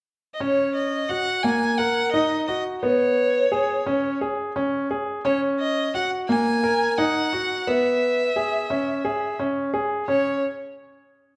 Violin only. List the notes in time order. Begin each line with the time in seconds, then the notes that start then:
0.34 D#5
0.41 C#5
0.75 D#5
1.09 F#5
1.43 G#5
1.78 F#5
2.12 D#5
2.47 D#5
2.82 C#5
5.25 C#5
5.60 D#5
5.95 F#5
6.29 G#5
6.91 G#5
6.98 F#5
7.68 E5
10.08 C#5